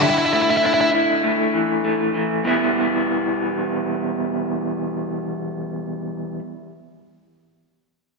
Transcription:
0.02 1.54 D3 medium
0.02 0.09 E4 loud
0.10 0.18 E4 medium
0.18 0.25 E4 medium
0.26 0.33 E4 medium
0.32 1.22 A3 medium
0.32 0.41 E4 medium
0.42 0.50 E4 medium
0.50 0.57 E4 medium
0.57 0.65 E4 medium
0.63 2.15 D4 medium
0.63 0.73 E4 medium
0.74 0.80 E4 medium
0.81 0.89 E4 medium
0.93 2.45 E4 medium
1.23 1.83 A3 medium
1.53 2.13 E3 medium
1.84 2.45 A3 medium
2.14 2.44 E3 medium
2.44 6.38 E2 medium
2.44 6.38 B2 loud
2.44 6.39 E3 loud
2.44 6.39 G3 loud
2.44 6.40 B3 loud
2.44 6.40 E4 loud

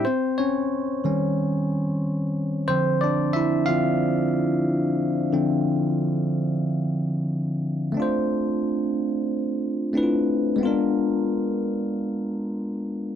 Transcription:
0.05 0.36 C4 medium
0.05 0.38 C5 medium
0.38 1.04 C#4 medium
0.38 1.65 C#5 medium
1.04 1.98 D#3 medium
1.04 1.99 G3 soft
1.04 1.99 C#4 medium
2.68 3.66 D3 medium
2.68 3.67 F3 soft
2.68 2.99 C4 medium
2.68 2.98 C5 loud
3.01 3.18 D4 medium
3.01 3.16 D5 medium
3.33 3.66 E4 medium
3.33 3.64 E5 medium
3.66 3.97 D3 soft
3.66 3.97 F3 soft
3.66 3.97 C4 soft
3.66 7.26 F4 medium
3.66 7.25 F5 medium
5.33 5.77 D3 medium
5.33 5.77 F3 soft
5.33 5.77 C4 medium
7.92 9.87 A3 medium
7.92 9.88 C4 medium
7.97 9.90 D4 medium
7.97 9.91 F4 medium
8.02 9.92 C5 medium
9.93 10.59 A3 soft
9.93 10.59 C4 soft
9.93 10.60 D4 soft
9.93 10.02 E4 soft
9.97 10.61 B4 soft
10.03 10.62 F4 soft
10.56 13.15 G#3 medium
10.56 13.15 B3 medium
10.61 10.67 C4 soft
10.61 13.15 F4 medium
10.65 13.15 D4 medium
10.65 13.15 A#4 medium

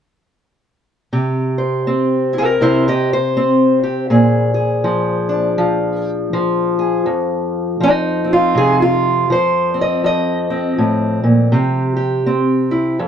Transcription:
1.13 2.59 C3 medium
1.13 2.37 G4 soft
1.58 2.61 C5 soft
1.87 3.35 C4 soft
2.33 2.61 E4 soft
2.38 2.48 G4 medium
2.38 2.87 A#4 medium
2.61 4.10 C3 medium
2.61 2.86 E4 medium
2.61 2.87 C5 medium
2.88 3.12 G4 medium
2.88 3.12 D#5 medium
3.13 6.10 C5 medium
3.37 4.07 C4 medium
3.83 4.08 G4 soft
4.10 7.04 A#2 medium
4.10 4.53 G#4 soft
4.54 6.78 G#4 soft
4.84 5.58 F3 medium
5.29 7.04 D4 soft
5.58 6.33 F3 medium
6.33 7.79 F3 medium
6.79 7.04 G#4 soft
7.06 10.03 F2 medium
7.80 9.29 F3 medium
7.80 9.07 D#4 medium
8.24 8.57 C4 soft
8.33 8.81 F4 medium
8.55 9.30 C3 medium
8.55 8.82 G#4 medium
8.82 9.31 F4 medium
9.30 12.26 F3 medium
9.30 9.81 C5 medium
9.74 10.49 C4 soft
9.81 10.05 D#5 medium
10.04 10.78 F2 medium
10.04 11.54 D#5 medium
10.50 11.53 C4 soft
10.78 11.23 A2 medium
11.23 11.53 A#2 medium
11.52 13.01 C3 medium
11.52 11.95 G4 soft
11.96 12.97 G4 soft
12.26 12.98 C4 soft
12.71 12.98 E4 soft
12.99 13.08 F2 medium

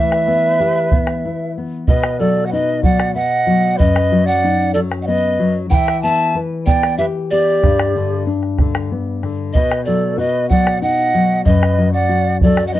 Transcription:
0.00 1.84 E3 medium
0.00 1.52 B4 medium
0.00 1.52 E5 loud
0.12 bombo rim medium
0.27 0.58 B3 medium
0.27 bombo rim soft
0.60 0.91 G4 medium
0.76 bombo rim soft
0.92 1.23 B3 medium
0.92 bombo low medium
1.07 bombo rim medium
1.25 1.55 E4 medium
1.58 1.88 B3 medium
1.87 3.76 B2 medium
1.87 2.21 B4 medium
1.87 2.21 D#5 medium
1.87 bombo low medium
2.04 bombo rim medium
2.19 2.51 F#3 medium
2.19 2.46 A4 medium
2.19 2.48 D5 medium
2.44 2.51 D#5 medium
2.44 2.54 F#5 medium
2.50 2.83 D#4 medium
2.50 2.82 B4 medium
2.50 2.83 D#5 medium
2.83 3.14 F#3 medium
2.83 3.13 D5 medium
2.83 3.13 F#5 medium
2.83 bombo low medium
3.00 bombo rim medium
3.14 3.46 B3 medium
3.14 3.19 E5 medium
3.14 3.80 F#5 loud
3.18 3.78 D#5 medium
3.47 3.78 F#3 medium
3.76 5.67 F#2 medium
3.76 4.26 B4 medium
3.76 4.28 D#5 loud
3.76 bombo low medium
3.96 bombo rim medium
4.12 4.43 F#3 medium
4.24 4.73 D5 medium
4.24 4.73 F#5 loud
4.44 4.75 D#4 medium
4.73 5.07 F#3 medium
4.73 4.79 A4 medium
4.73 4.80 D5 medium
4.92 bombo rim medium
5.01 5.08 D#5 medium
5.01 5.08 F#5 medium
5.06 5.39 B3 medium
5.06 5.55 B4 medium
5.06 5.55 D#5 loud
5.39 5.70 F#3 medium
5.69 7.58 E3 medium
5.69 5.75 F#5 medium
5.69 6.00 G5 loud
5.69 bombo low medium
5.74 6.00 E5 medium
5.88 bombo rim medium
6.02 6.34 B3 medium
6.02 6.37 E5 medium
6.02 6.37 A5 loud
6.35 6.66 B4 medium
6.65 6.98 B3 medium
6.65 6.96 D5 medium
6.65 6.96 G5 loud
6.65 bombo low medium
6.83 bombo rim medium
6.98 7.30 G4 medium
6.98 7.06 B4 medium
6.98 7.05 E5 loud
7.30 7.62 B3 medium
7.30 8.22 G4 medium
7.30 8.22 D5 loud
7.63 9.50 G2 medium
7.63 bombo rim soft
7.63 bombo low medium
7.79 bombo rim medium
7.95 8.26 D3 medium
8.27 8.57 D4 medium
8.43 bombo rim soft
8.58 8.90 D3 medium
8.58 bombo rim soft
8.58 bombo low medium
8.75 bombo rim medium
8.92 9.22 B3 medium
9.23 9.53 D3 medium
9.23 bombo rim soft
9.53 11.42 B2 medium
9.53 9.83 B4 medium
9.53 9.83 D#5 medium
9.53 bombo low medium
9.71 bombo rim medium
9.85 10.17 F#3 medium
9.85 10.18 A4 medium
9.85 10.20 D5 medium
10.17 10.48 F#4 medium
10.17 10.49 B4 medium
10.17 10.49 D#5 medium
10.49 10.81 F#3 medium
10.49 10.79 D5 medium
10.49 10.79 F#5 loud
10.49 bombo low medium
10.67 bombo rim medium
10.81 11.12 D#4 medium
10.81 11.41 D#5 medium
10.81 11.41 F#5 loud
11.14 11.44 F#3 medium
11.45 12.80 F#2 medium
11.45 11.90 B4 medium
11.45 11.89 D#5 medium
11.45 bombo low medium
11.63 bombo rim medium
11.78 12.08 F#3 medium
11.93 12.37 D5 medium
11.93 12.37 F#5 loud
12.09 12.40 F#4 medium
12.41 12.73 F#3 medium
12.41 12.64 A4 medium
12.41 12.64 D5 medium
12.41 bombo low medium
12.57 bombo rim medium
12.66 12.74 D#5 medium
12.66 12.75 F#5 medium
12.73 12.80 D#4 medium
12.73 12.80 B4 medium
12.73 12.80 D#5 loud

